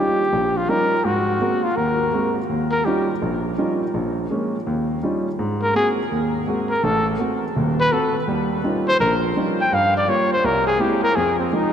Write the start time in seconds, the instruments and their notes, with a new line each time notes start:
Already playing: grand piano G3 C#4 D#4 F4, trumpet G4
0.33 grand piano A#1
0.57 trumpet F4
0.68 grand piano G3 C#4 D#4 F4, trumpet A#4
1.05 grand piano G#2, trumpet F#4
1.41 grand piano G#3 A#3 C4 F#4
1.63 trumpet F4
1.76 grand piano D#2, trumpet A#4
2.13 grand piano G#3 A#3 C4 F#4
2.49 grand piano D#2
2.71 trumpet A#4
2.85 grand piano G3 C#4 D#4 F4, trumpet G4
3.22 grand piano A#1
3.58 grand piano G3 C#4 D#4 F4
3.94 grand piano A#1
4.31 grand piano G#3 A#3 C#4
4.67 grand piano D#2
5.03 grand piano G3 C#4 D#4 F4
5.39 grand piano G#2
5.62 trumpet A#4
5.74 grand piano G#3 A#3 C4 F#4, trumpet G#4
6.12 grand piano D#2
6.47 grand piano G#3 A#3 C4 F#4
6.69 trumpet A#4
6.84 grand piano A1 A2, trumpet A4
7.19 grand piano A3 C4 F#4
7.56 grand piano D#1 D#2
7.80 trumpet B4
7.91 grand piano A3 C4 F#4, trumpet A4
8.28 grand piano D#2 G3
8.64 grand piano G3 C#4 D#4 F4
8.88 trumpet C5
9.00 grand piano A#1, trumpet A#4
9.36 grand piano G3 C#4 D#4 F4
9.61 trumpet G5
9.72 grand piano G2, trumpet F5
9.97 trumpet D5
10.08 grand piano G3 A#3 F4, trumpet C#5
10.33 trumpet C5
10.44 grand piano C2, trumpet A#4
10.67 trumpet G#4
10.79 grand piano G#3 A#3 C4 E4, trumpet G4
11.03 trumpet A#4
11.16 grand piano F2, trumpet G#4
11.39 trumpet C4
11.52 grand piano F3 G#3 D#4, trumpet D#4